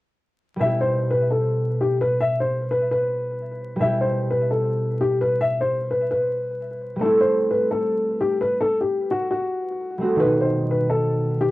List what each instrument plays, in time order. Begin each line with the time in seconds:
0.56 harp B2 G3
0.61 harp E4, grand piano E5
0.66 harp G4
0.81 grand piano C5
1.11 grand piano B4
1.31 grand piano A4
1.81 grand piano G4
2.01 grand piano B4
2.21 grand piano E5
2.40 grand piano C5
2.71 grand piano B4
2.91 grand piano B4
3.76 harp B2 G3
3.81 harp E4, grand piano E5
3.85 harp G4
4.01 grand piano C5
4.31 grand piano B4
4.51 grand piano A4
5.01 grand piano G4
5.21 grand piano B4
5.41 grand piano E5
5.61 grand piano C5
5.91 grand piano B4
6.11 grand piano B4
6.96 harp G3 A3
7.01 harp C4, grand piano A4
7.05 harp E4
7.21 grand piano C5
7.51 grand piano B4
7.71 grand piano A4
8.21 grand piano G4
8.41 grand piano B4
8.61 grand piano A4
8.81 grand piano G4
9.11 grand piano F#4
9.31 grand piano F#4
9.98 harp G3 A3 C4
10.03 harp F#4
10.16 harp D#3
10.20 harp B2, grand piano B4
10.25 harp D#4
10.41 grand piano C5
10.71 grand piano B4
10.90 grand piano A4
11.41 grand piano G4